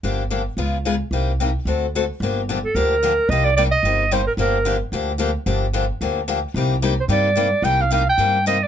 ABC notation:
X:1
M:4/4
L:1/8
Q:"Swing" 1/4=221
K:Gm
V:1 name="Clarinet"
z8 | z8 | z3 A B4 | e d d e3 c B |
B3 z4 z | z8 | z3 c d4 | g f f g3 e d |]
V:2 name="Steel-string acoustic guitar"
[D,F,B,DG] z [D,F,B,DG] z [^C,^G,=B,^E^G] z [C,G,B,EG] z | [C,G,B,EG] z [C,G,B,EG] z [D,A,C^FA] z [D,A,CFA] z | [D,F,B,DG] z [D,F,B,DG] z [D,F,B,DG] z [D,F,B,DG] z | [C,G,B,EG] z [C,G,B,EG] z [C,G,B,EG] z [C,G,B,EG] z |
[D,F,B,DG] z [D,F,B,DG] z [D,F,B,DG] z [D,F,B,DG] z | [D,F,B,DG] z [D,F,B,DG] z [D,F,B,DG] z [D,F,B,DG] z | [C,G,B,EG] z [C,G,B,EG] z [C,G,B,EG] z [C,G,B,EG] z | [C,G,B,EG] z [C,G,B,EG] z [C,G,B,EG] z [C,G,B,EG] z |]
V:3 name="Upright bass" clef=bass
G,,,4 ^C,,4 | C,,4 D,,4 | G,,,4 D,,4 | C,,4 G,,,4 |
G,,,4 D,,4 | G,,,4 D,,4 | C,,4 G,,4 | C,,4 G,,4 |]